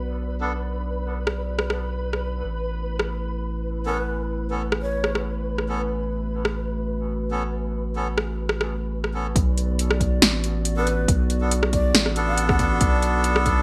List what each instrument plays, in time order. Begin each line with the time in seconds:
Already playing: sub bass B1, analog synth pad B3 F#4 D5, synth texture B4
0.41 melodica B3 D4 A4
1.27 cross-stick
1.59 cross-stick
1.70 cross-stick
2.13 cross-stick
2.45 sub bass A1, analog synth pad A3 E4 B4
2.99 cross-stick
3.86 melodica B3 C#4 A4, shakuhachi B4
4.51 melodica B3 C#4 A4
4.72 cross-stick
4.82 shakuhachi C#5
5.04 cross-stick
5.15 cross-stick
5.58 cross-stick
5.69 melodica B3 C#4 A4
5.90 analog synth pad F#4
6.45 cross-stick
7.31 melodica B3 C#4 A4
7.96 melodica B3 C#4 A4
8.18 cross-stick
8.49 cross-stick
8.61 cross-stick
9.04 cross-stick
9.14 melodica B3 C#4 A4
9.36 sub bass B1, analog synth pad B3 F#4 D5, kick, closed hi-hat
9.58 closed hi-hat
9.79 closed hi-hat
9.91 cross-stick
10.00 kick, closed hi-hat
10.22 sub bass A1, snare, closed hi-hat
10.44 closed hi-hat
10.65 closed hi-hat
10.77 melodica B3 D4 A4, shakuhachi B4
10.87 closed hi-hat
11.08 sub bass B1, kick, closed hi-hat
11.30 closed hi-hat
11.41 melodica B3 D4 A4
11.51 closed hi-hat
11.63 cross-stick
11.73 shakuhachi D5, kick, closed hi-hat
11.94 sub bass A1, cross-stick, snare, closed hi-hat
12.06 cross-stick
12.16 melodica B3 D4 A4, closed hi-hat
12.28 shakuhachi F#5
12.38 closed hi-hat
12.49 shakuhachi F#5, kick, cross-stick
12.59 shakuhachi F#5, kick, closed hi-hat
12.81 sub bass B1, kick, closed hi-hat
13.02 closed hi-hat
13.24 closed hi-hat
13.36 cross-stick
13.46 kick, closed hi-hat